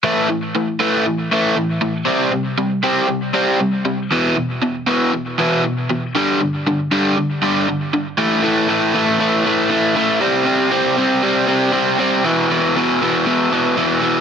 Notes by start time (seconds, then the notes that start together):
0.03 A2 E3 A3
0.30 A2 E3
0.55 A2 E3
0.80 A2 E3 A3
1.06 A2 E3
1.32 A2 E3 A3
1.56 A2 E3
1.81 A2 E3
2.05 C3 G3 C4
2.31 C3 G3
2.58 C3 G3
2.83 C3 G3 C4
3.08 C3 G3
3.33 C3 G3 C4
3.60 C3 G3
3.85 C3 G3
4.11 E2 B2 E3
4.36 E2 B2
4.62 E2 B2
4.87 E2 B2 E3
5.13 E2 B2
5.39 E2 B2 E3
5.65 E2 B2
5.90 E2 B2
6.15 G2 D3 G3
6.41 G2 D3
6.67 G2 D3
6.91 G2 D3 G3
7.17 G2 D3
7.42 G2 D3 G3
7.68 G2 D3
7.94 G2 D3
8.18 A2 E3 A3
8.43 A2 E3 A3
8.68 A2 E3 A3
8.94 A2 E3 A3
9.20 A2 E3 A3
9.45 A2 E3 A3
9.70 A2 E3 A3
9.96 A2 E3 A3
10.21 C3 G3 C4
10.45 C3 G3 C4
10.71 C3 G3 C4
10.97 C3 G3 C4
11.23 C3 G3 C4
11.47 C3 G3 C4
11.72 C3 G3 C4
11.99 C3 G3 C4
12.24 E2 B2 E3
12.50 E2 B2 E3
12.75 E2 B2 E3
13.02 E2 B2 E3
13.26 E2 B2 E3
13.52 E2 B2 E3
13.76 E2 B2 E3
14.01 E2 B2 E3